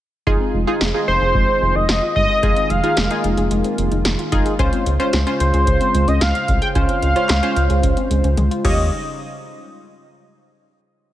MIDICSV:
0, 0, Header, 1, 7, 480
1, 0, Start_track
1, 0, Tempo, 540541
1, 237, Time_signature, 4, 2, 24, 8
1, 9885, End_track
2, 0, Start_track
2, 0, Title_t, "Analog synth lead"
2, 0, Program_c, 0, 81
2, 957, Note_on_c, 0, 72, 97
2, 1556, Note_on_c, 0, 75, 96
2, 1569, Note_off_c, 0, 72, 0
2, 1910, Note_off_c, 0, 75, 0
2, 1916, Note_on_c, 0, 75, 101
2, 2396, Note_on_c, 0, 77, 106
2, 2409, Note_off_c, 0, 75, 0
2, 2876, Note_off_c, 0, 77, 0
2, 4798, Note_on_c, 0, 72, 101
2, 5397, Note_on_c, 0, 75, 94
2, 5411, Note_off_c, 0, 72, 0
2, 5517, Note_on_c, 0, 77, 107
2, 5530, Note_off_c, 0, 75, 0
2, 5873, Note_off_c, 0, 77, 0
2, 5878, Note_on_c, 0, 79, 97
2, 5932, Note_off_c, 0, 79, 0
2, 5998, Note_on_c, 0, 77, 114
2, 7402, Note_off_c, 0, 77, 0
2, 7677, Note_on_c, 0, 75, 87
2, 7900, Note_off_c, 0, 75, 0
2, 9885, End_track
3, 0, Start_track
3, 0, Title_t, "Analog polysynth"
3, 0, Program_c, 1, 90
3, 238, Note_on_c, 1, 63, 88
3, 238, Note_on_c, 1, 65, 82
3, 238, Note_on_c, 1, 68, 97
3, 520, Note_off_c, 1, 63, 0
3, 520, Note_off_c, 1, 65, 0
3, 520, Note_off_c, 1, 68, 0
3, 598, Note_on_c, 1, 63, 86
3, 598, Note_on_c, 1, 65, 83
3, 598, Note_on_c, 1, 68, 99
3, 786, Note_off_c, 1, 63, 0
3, 786, Note_off_c, 1, 65, 0
3, 786, Note_off_c, 1, 68, 0
3, 837, Note_on_c, 1, 65, 67
3, 837, Note_on_c, 1, 68, 81
3, 838, Note_on_c, 1, 63, 76
3, 1591, Note_off_c, 1, 65, 0
3, 1591, Note_off_c, 1, 68, 0
3, 1592, Note_off_c, 1, 63, 0
3, 2157, Note_on_c, 1, 68, 83
3, 2158, Note_on_c, 1, 63, 76
3, 2158, Note_on_c, 1, 65, 69
3, 2440, Note_off_c, 1, 63, 0
3, 2440, Note_off_c, 1, 65, 0
3, 2440, Note_off_c, 1, 68, 0
3, 2518, Note_on_c, 1, 63, 74
3, 2518, Note_on_c, 1, 65, 67
3, 2518, Note_on_c, 1, 68, 83
3, 2706, Note_off_c, 1, 63, 0
3, 2706, Note_off_c, 1, 65, 0
3, 2706, Note_off_c, 1, 68, 0
3, 2758, Note_on_c, 1, 63, 73
3, 2758, Note_on_c, 1, 65, 69
3, 2758, Note_on_c, 1, 68, 84
3, 3512, Note_off_c, 1, 63, 0
3, 3512, Note_off_c, 1, 65, 0
3, 3512, Note_off_c, 1, 68, 0
3, 3837, Note_on_c, 1, 63, 90
3, 3837, Note_on_c, 1, 65, 83
3, 3838, Note_on_c, 1, 68, 100
3, 4026, Note_off_c, 1, 63, 0
3, 4026, Note_off_c, 1, 65, 0
3, 4026, Note_off_c, 1, 68, 0
3, 4078, Note_on_c, 1, 61, 90
3, 4078, Note_on_c, 1, 65, 83
3, 4078, Note_on_c, 1, 72, 102
3, 4360, Note_off_c, 1, 61, 0
3, 4360, Note_off_c, 1, 65, 0
3, 4360, Note_off_c, 1, 72, 0
3, 4437, Note_on_c, 1, 65, 80
3, 4437, Note_on_c, 1, 72, 97
3, 4438, Note_on_c, 1, 61, 88
3, 4626, Note_off_c, 1, 61, 0
3, 4626, Note_off_c, 1, 65, 0
3, 4626, Note_off_c, 1, 72, 0
3, 4678, Note_on_c, 1, 61, 75
3, 4678, Note_on_c, 1, 65, 71
3, 4678, Note_on_c, 1, 72, 86
3, 5432, Note_off_c, 1, 61, 0
3, 5432, Note_off_c, 1, 65, 0
3, 5432, Note_off_c, 1, 72, 0
3, 5997, Note_on_c, 1, 65, 69
3, 5997, Note_on_c, 1, 72, 86
3, 5998, Note_on_c, 1, 61, 77
3, 6280, Note_off_c, 1, 61, 0
3, 6280, Note_off_c, 1, 65, 0
3, 6280, Note_off_c, 1, 72, 0
3, 6357, Note_on_c, 1, 61, 75
3, 6357, Note_on_c, 1, 65, 70
3, 6357, Note_on_c, 1, 72, 86
3, 6546, Note_off_c, 1, 61, 0
3, 6546, Note_off_c, 1, 65, 0
3, 6546, Note_off_c, 1, 72, 0
3, 6596, Note_on_c, 1, 61, 89
3, 6596, Note_on_c, 1, 65, 84
3, 6596, Note_on_c, 1, 72, 101
3, 7351, Note_off_c, 1, 61, 0
3, 7351, Note_off_c, 1, 65, 0
3, 7351, Note_off_c, 1, 72, 0
3, 7677, Note_on_c, 1, 65, 83
3, 7677, Note_on_c, 1, 67, 78
3, 7677, Note_on_c, 1, 73, 94
3, 7900, Note_off_c, 1, 65, 0
3, 7900, Note_off_c, 1, 67, 0
3, 7900, Note_off_c, 1, 73, 0
3, 9885, End_track
4, 0, Start_track
4, 0, Title_t, "Synth pluck"
4, 0, Program_c, 2, 84
4, 237, Note_on_c, 2, 56, 94
4, 350, Note_off_c, 2, 56, 0
4, 357, Note_on_c, 2, 60, 74
4, 470, Note_off_c, 2, 60, 0
4, 477, Note_on_c, 2, 56, 77
4, 590, Note_off_c, 2, 56, 0
4, 597, Note_on_c, 2, 63, 78
4, 710, Note_off_c, 2, 63, 0
4, 718, Note_on_c, 2, 56, 82
4, 831, Note_off_c, 2, 56, 0
4, 838, Note_on_c, 2, 65, 79
4, 950, Note_off_c, 2, 65, 0
4, 957, Note_on_c, 2, 56, 78
4, 1070, Note_off_c, 2, 56, 0
4, 1077, Note_on_c, 2, 68, 83
4, 1190, Note_off_c, 2, 68, 0
4, 1198, Note_on_c, 2, 56, 91
4, 1311, Note_off_c, 2, 56, 0
4, 1318, Note_on_c, 2, 60, 72
4, 1430, Note_off_c, 2, 60, 0
4, 1438, Note_on_c, 2, 56, 77
4, 1550, Note_off_c, 2, 56, 0
4, 1558, Note_on_c, 2, 63, 74
4, 1670, Note_off_c, 2, 63, 0
4, 1677, Note_on_c, 2, 56, 84
4, 1790, Note_off_c, 2, 56, 0
4, 1798, Note_on_c, 2, 65, 78
4, 1910, Note_off_c, 2, 65, 0
4, 1918, Note_on_c, 2, 56, 78
4, 2031, Note_off_c, 2, 56, 0
4, 2038, Note_on_c, 2, 68, 82
4, 2150, Note_off_c, 2, 68, 0
4, 2157, Note_on_c, 2, 56, 90
4, 2270, Note_off_c, 2, 56, 0
4, 2277, Note_on_c, 2, 60, 76
4, 2390, Note_off_c, 2, 60, 0
4, 2397, Note_on_c, 2, 56, 80
4, 2510, Note_off_c, 2, 56, 0
4, 2517, Note_on_c, 2, 63, 77
4, 2630, Note_off_c, 2, 63, 0
4, 2638, Note_on_c, 2, 56, 81
4, 2750, Note_off_c, 2, 56, 0
4, 2757, Note_on_c, 2, 65, 80
4, 2870, Note_off_c, 2, 65, 0
4, 2878, Note_on_c, 2, 56, 76
4, 2990, Note_off_c, 2, 56, 0
4, 2998, Note_on_c, 2, 68, 83
4, 3110, Note_off_c, 2, 68, 0
4, 3117, Note_on_c, 2, 56, 93
4, 3230, Note_off_c, 2, 56, 0
4, 3237, Note_on_c, 2, 60, 76
4, 3350, Note_off_c, 2, 60, 0
4, 3358, Note_on_c, 2, 56, 77
4, 3470, Note_off_c, 2, 56, 0
4, 3477, Note_on_c, 2, 63, 75
4, 3590, Note_off_c, 2, 63, 0
4, 3597, Note_on_c, 2, 56, 85
4, 3710, Note_off_c, 2, 56, 0
4, 3717, Note_on_c, 2, 65, 80
4, 3830, Note_off_c, 2, 65, 0
4, 3837, Note_on_c, 2, 56, 76
4, 3950, Note_off_c, 2, 56, 0
4, 3957, Note_on_c, 2, 68, 84
4, 4070, Note_off_c, 2, 68, 0
4, 4077, Note_on_c, 2, 56, 90
4, 4190, Note_off_c, 2, 56, 0
4, 4197, Note_on_c, 2, 60, 78
4, 4310, Note_off_c, 2, 60, 0
4, 4317, Note_on_c, 2, 56, 76
4, 4430, Note_off_c, 2, 56, 0
4, 4437, Note_on_c, 2, 61, 76
4, 4550, Note_off_c, 2, 61, 0
4, 4558, Note_on_c, 2, 56, 80
4, 4670, Note_off_c, 2, 56, 0
4, 4677, Note_on_c, 2, 65, 81
4, 4790, Note_off_c, 2, 65, 0
4, 4798, Note_on_c, 2, 56, 80
4, 4910, Note_off_c, 2, 56, 0
4, 4917, Note_on_c, 2, 68, 83
4, 5030, Note_off_c, 2, 68, 0
4, 5037, Note_on_c, 2, 56, 92
4, 5150, Note_off_c, 2, 56, 0
4, 5158, Note_on_c, 2, 60, 78
4, 5271, Note_off_c, 2, 60, 0
4, 5278, Note_on_c, 2, 56, 83
4, 5391, Note_off_c, 2, 56, 0
4, 5398, Note_on_c, 2, 61, 75
4, 5510, Note_off_c, 2, 61, 0
4, 5517, Note_on_c, 2, 56, 84
4, 5630, Note_off_c, 2, 56, 0
4, 5638, Note_on_c, 2, 65, 79
4, 5750, Note_off_c, 2, 65, 0
4, 5757, Note_on_c, 2, 56, 76
4, 5870, Note_off_c, 2, 56, 0
4, 5877, Note_on_c, 2, 68, 83
4, 5990, Note_off_c, 2, 68, 0
4, 5998, Note_on_c, 2, 56, 91
4, 6110, Note_off_c, 2, 56, 0
4, 6118, Note_on_c, 2, 60, 77
4, 6230, Note_off_c, 2, 60, 0
4, 6237, Note_on_c, 2, 56, 76
4, 6350, Note_off_c, 2, 56, 0
4, 6358, Note_on_c, 2, 61, 77
4, 6470, Note_off_c, 2, 61, 0
4, 6477, Note_on_c, 2, 56, 81
4, 6590, Note_off_c, 2, 56, 0
4, 6598, Note_on_c, 2, 65, 80
4, 6710, Note_off_c, 2, 65, 0
4, 6717, Note_on_c, 2, 56, 78
4, 6830, Note_off_c, 2, 56, 0
4, 6837, Note_on_c, 2, 68, 83
4, 6950, Note_off_c, 2, 68, 0
4, 6957, Note_on_c, 2, 56, 91
4, 7070, Note_off_c, 2, 56, 0
4, 7077, Note_on_c, 2, 60, 73
4, 7190, Note_off_c, 2, 60, 0
4, 7197, Note_on_c, 2, 56, 80
4, 7310, Note_off_c, 2, 56, 0
4, 7317, Note_on_c, 2, 61, 76
4, 7430, Note_off_c, 2, 61, 0
4, 7437, Note_on_c, 2, 56, 85
4, 7550, Note_off_c, 2, 56, 0
4, 7556, Note_on_c, 2, 65, 79
4, 7666, Note_off_c, 2, 65, 0
4, 7676, Note_on_c, 2, 61, 78
4, 7676, Note_on_c, 2, 63, 80
4, 7676, Note_on_c, 2, 65, 95
4, 7677, Note_on_c, 2, 55, 84
4, 7900, Note_off_c, 2, 55, 0
4, 7900, Note_off_c, 2, 61, 0
4, 7900, Note_off_c, 2, 63, 0
4, 7900, Note_off_c, 2, 65, 0
4, 9885, End_track
5, 0, Start_track
5, 0, Title_t, "Analog synth pad"
5, 0, Program_c, 3, 89
5, 237, Note_on_c, 3, 51, 74
5, 237, Note_on_c, 3, 56, 69
5, 237, Note_on_c, 3, 60, 70
5, 237, Note_on_c, 3, 65, 84
5, 2138, Note_off_c, 3, 60, 0
5, 2157, Note_on_c, 3, 58, 68
5, 4042, Note_off_c, 3, 51, 0
5, 4058, Note_off_c, 3, 58, 0
5, 4078, Note_on_c, 3, 49, 76
5, 4078, Note_on_c, 3, 72, 71
5, 7642, Note_off_c, 3, 49, 0
5, 7642, Note_off_c, 3, 56, 0
5, 7642, Note_off_c, 3, 65, 0
5, 7642, Note_off_c, 3, 72, 0
5, 7677, Note_on_c, 3, 49, 72
5, 7677, Note_on_c, 3, 55, 66
5, 7677, Note_on_c, 3, 63, 67
5, 7677, Note_on_c, 3, 65, 81
5, 7900, Note_off_c, 3, 49, 0
5, 7900, Note_off_c, 3, 55, 0
5, 7900, Note_off_c, 3, 63, 0
5, 7900, Note_off_c, 3, 65, 0
5, 9885, End_track
6, 0, Start_track
6, 0, Title_t, "Analog synth bass"
6, 0, Program_c, 4, 38
6, 237, Note_on_c, 4, 29, 100
6, 339, Note_off_c, 4, 29, 0
6, 477, Note_on_c, 4, 29, 97
6, 579, Note_off_c, 4, 29, 0
6, 718, Note_on_c, 4, 29, 102
6, 819, Note_off_c, 4, 29, 0
6, 958, Note_on_c, 4, 29, 97
6, 1060, Note_off_c, 4, 29, 0
6, 1078, Note_on_c, 4, 29, 100
6, 1180, Note_off_c, 4, 29, 0
6, 1195, Note_on_c, 4, 29, 98
6, 1298, Note_off_c, 4, 29, 0
6, 1438, Note_on_c, 4, 29, 106
6, 1540, Note_off_c, 4, 29, 0
6, 1558, Note_on_c, 4, 29, 96
6, 1660, Note_off_c, 4, 29, 0
6, 1677, Note_on_c, 4, 29, 99
6, 1779, Note_off_c, 4, 29, 0
6, 1919, Note_on_c, 4, 31, 95
6, 2020, Note_off_c, 4, 31, 0
6, 2157, Note_on_c, 4, 29, 94
6, 2259, Note_off_c, 4, 29, 0
6, 2398, Note_on_c, 4, 29, 98
6, 2500, Note_off_c, 4, 29, 0
6, 2637, Note_on_c, 4, 29, 102
6, 2739, Note_off_c, 4, 29, 0
6, 2878, Note_on_c, 4, 29, 94
6, 2980, Note_off_c, 4, 29, 0
6, 2997, Note_on_c, 4, 29, 99
6, 3099, Note_off_c, 4, 29, 0
6, 3117, Note_on_c, 4, 29, 96
6, 3219, Note_off_c, 4, 29, 0
6, 3357, Note_on_c, 4, 29, 99
6, 3459, Note_off_c, 4, 29, 0
6, 3477, Note_on_c, 4, 29, 91
6, 3579, Note_off_c, 4, 29, 0
6, 3597, Note_on_c, 4, 29, 96
6, 3699, Note_off_c, 4, 29, 0
6, 3839, Note_on_c, 4, 29, 91
6, 3940, Note_off_c, 4, 29, 0
6, 4077, Note_on_c, 4, 37, 104
6, 4179, Note_off_c, 4, 37, 0
6, 4316, Note_on_c, 4, 37, 98
6, 4419, Note_off_c, 4, 37, 0
6, 4557, Note_on_c, 4, 37, 102
6, 4659, Note_off_c, 4, 37, 0
6, 4797, Note_on_c, 4, 37, 95
6, 4899, Note_off_c, 4, 37, 0
6, 4917, Note_on_c, 4, 37, 98
6, 5019, Note_off_c, 4, 37, 0
6, 5035, Note_on_c, 4, 37, 100
6, 5138, Note_off_c, 4, 37, 0
6, 5277, Note_on_c, 4, 37, 104
6, 5379, Note_off_c, 4, 37, 0
6, 5397, Note_on_c, 4, 37, 88
6, 5499, Note_off_c, 4, 37, 0
6, 5517, Note_on_c, 4, 37, 98
6, 5619, Note_off_c, 4, 37, 0
6, 5758, Note_on_c, 4, 36, 88
6, 5860, Note_off_c, 4, 36, 0
6, 5997, Note_on_c, 4, 37, 106
6, 6099, Note_off_c, 4, 37, 0
6, 6237, Note_on_c, 4, 37, 93
6, 6339, Note_off_c, 4, 37, 0
6, 6478, Note_on_c, 4, 37, 102
6, 6580, Note_off_c, 4, 37, 0
6, 6718, Note_on_c, 4, 37, 104
6, 6819, Note_off_c, 4, 37, 0
6, 6837, Note_on_c, 4, 37, 103
6, 6939, Note_off_c, 4, 37, 0
6, 6955, Note_on_c, 4, 37, 105
6, 7058, Note_off_c, 4, 37, 0
6, 7197, Note_on_c, 4, 37, 104
6, 7299, Note_off_c, 4, 37, 0
6, 7317, Note_on_c, 4, 37, 102
6, 7419, Note_off_c, 4, 37, 0
6, 7437, Note_on_c, 4, 37, 105
6, 7539, Note_off_c, 4, 37, 0
6, 7677, Note_on_c, 4, 39, 101
6, 7900, Note_off_c, 4, 39, 0
6, 9885, End_track
7, 0, Start_track
7, 0, Title_t, "Drums"
7, 237, Note_on_c, 9, 36, 118
7, 326, Note_off_c, 9, 36, 0
7, 718, Note_on_c, 9, 38, 117
7, 807, Note_off_c, 9, 38, 0
7, 1195, Note_on_c, 9, 36, 91
7, 1284, Note_off_c, 9, 36, 0
7, 1677, Note_on_c, 9, 38, 109
7, 1766, Note_off_c, 9, 38, 0
7, 1919, Note_on_c, 9, 36, 99
7, 2007, Note_off_c, 9, 36, 0
7, 2157, Note_on_c, 9, 36, 113
7, 2158, Note_on_c, 9, 42, 59
7, 2246, Note_off_c, 9, 36, 0
7, 2246, Note_off_c, 9, 42, 0
7, 2278, Note_on_c, 9, 42, 55
7, 2366, Note_off_c, 9, 42, 0
7, 2399, Note_on_c, 9, 42, 74
7, 2488, Note_off_c, 9, 42, 0
7, 2518, Note_on_c, 9, 42, 49
7, 2607, Note_off_c, 9, 42, 0
7, 2636, Note_on_c, 9, 42, 76
7, 2639, Note_on_c, 9, 38, 114
7, 2724, Note_off_c, 9, 42, 0
7, 2727, Note_off_c, 9, 38, 0
7, 2758, Note_on_c, 9, 42, 57
7, 2847, Note_off_c, 9, 42, 0
7, 2878, Note_on_c, 9, 42, 74
7, 2967, Note_off_c, 9, 42, 0
7, 2997, Note_on_c, 9, 42, 58
7, 3085, Note_off_c, 9, 42, 0
7, 3116, Note_on_c, 9, 42, 68
7, 3205, Note_off_c, 9, 42, 0
7, 3236, Note_on_c, 9, 42, 53
7, 3325, Note_off_c, 9, 42, 0
7, 3359, Note_on_c, 9, 42, 74
7, 3448, Note_off_c, 9, 42, 0
7, 3477, Note_on_c, 9, 42, 47
7, 3566, Note_off_c, 9, 42, 0
7, 3596, Note_on_c, 9, 42, 72
7, 3597, Note_on_c, 9, 38, 110
7, 3685, Note_off_c, 9, 42, 0
7, 3686, Note_off_c, 9, 38, 0
7, 3720, Note_on_c, 9, 42, 55
7, 3809, Note_off_c, 9, 42, 0
7, 3838, Note_on_c, 9, 42, 69
7, 3839, Note_on_c, 9, 36, 97
7, 3926, Note_off_c, 9, 42, 0
7, 3928, Note_off_c, 9, 36, 0
7, 3958, Note_on_c, 9, 42, 57
7, 4047, Note_off_c, 9, 42, 0
7, 4077, Note_on_c, 9, 36, 119
7, 4078, Note_on_c, 9, 42, 62
7, 4166, Note_off_c, 9, 36, 0
7, 4167, Note_off_c, 9, 42, 0
7, 4198, Note_on_c, 9, 42, 54
7, 4287, Note_off_c, 9, 42, 0
7, 4319, Note_on_c, 9, 42, 74
7, 4408, Note_off_c, 9, 42, 0
7, 4439, Note_on_c, 9, 42, 50
7, 4527, Note_off_c, 9, 42, 0
7, 4556, Note_on_c, 9, 42, 74
7, 4559, Note_on_c, 9, 38, 118
7, 4645, Note_off_c, 9, 42, 0
7, 4648, Note_off_c, 9, 38, 0
7, 4678, Note_on_c, 9, 42, 58
7, 4767, Note_off_c, 9, 42, 0
7, 4798, Note_on_c, 9, 42, 78
7, 4887, Note_off_c, 9, 42, 0
7, 4917, Note_on_c, 9, 42, 56
7, 5006, Note_off_c, 9, 42, 0
7, 5035, Note_on_c, 9, 36, 98
7, 5037, Note_on_c, 9, 42, 73
7, 5124, Note_off_c, 9, 36, 0
7, 5126, Note_off_c, 9, 42, 0
7, 5157, Note_on_c, 9, 42, 54
7, 5246, Note_off_c, 9, 42, 0
7, 5280, Note_on_c, 9, 42, 78
7, 5369, Note_off_c, 9, 42, 0
7, 5398, Note_on_c, 9, 42, 48
7, 5486, Note_off_c, 9, 42, 0
7, 5516, Note_on_c, 9, 42, 72
7, 5517, Note_on_c, 9, 38, 114
7, 5605, Note_off_c, 9, 42, 0
7, 5606, Note_off_c, 9, 38, 0
7, 5640, Note_on_c, 9, 42, 57
7, 5729, Note_off_c, 9, 42, 0
7, 5757, Note_on_c, 9, 42, 68
7, 5759, Note_on_c, 9, 36, 100
7, 5846, Note_off_c, 9, 42, 0
7, 5847, Note_off_c, 9, 36, 0
7, 5878, Note_on_c, 9, 42, 58
7, 5966, Note_off_c, 9, 42, 0
7, 5997, Note_on_c, 9, 36, 118
7, 5997, Note_on_c, 9, 42, 62
7, 6086, Note_off_c, 9, 36, 0
7, 6086, Note_off_c, 9, 42, 0
7, 6117, Note_on_c, 9, 42, 55
7, 6206, Note_off_c, 9, 42, 0
7, 6238, Note_on_c, 9, 42, 74
7, 6327, Note_off_c, 9, 42, 0
7, 6358, Note_on_c, 9, 42, 49
7, 6446, Note_off_c, 9, 42, 0
7, 6475, Note_on_c, 9, 42, 78
7, 6478, Note_on_c, 9, 38, 116
7, 6478, Note_on_c, 9, 39, 96
7, 6564, Note_off_c, 9, 42, 0
7, 6567, Note_off_c, 9, 38, 0
7, 6567, Note_off_c, 9, 39, 0
7, 6598, Note_on_c, 9, 42, 58
7, 6686, Note_off_c, 9, 42, 0
7, 6718, Note_on_c, 9, 42, 77
7, 6806, Note_off_c, 9, 42, 0
7, 6837, Note_on_c, 9, 42, 58
7, 6926, Note_off_c, 9, 42, 0
7, 6955, Note_on_c, 9, 36, 96
7, 6957, Note_on_c, 9, 42, 73
7, 7044, Note_off_c, 9, 36, 0
7, 7045, Note_off_c, 9, 42, 0
7, 7077, Note_on_c, 9, 42, 52
7, 7165, Note_off_c, 9, 42, 0
7, 7200, Note_on_c, 9, 42, 74
7, 7289, Note_off_c, 9, 42, 0
7, 7318, Note_on_c, 9, 42, 48
7, 7407, Note_off_c, 9, 42, 0
7, 7436, Note_on_c, 9, 42, 75
7, 7437, Note_on_c, 9, 48, 60
7, 7525, Note_off_c, 9, 42, 0
7, 7526, Note_off_c, 9, 48, 0
7, 7560, Note_on_c, 9, 42, 56
7, 7649, Note_off_c, 9, 42, 0
7, 7677, Note_on_c, 9, 36, 108
7, 7678, Note_on_c, 9, 49, 92
7, 7766, Note_off_c, 9, 36, 0
7, 7766, Note_off_c, 9, 49, 0
7, 9885, End_track
0, 0, End_of_file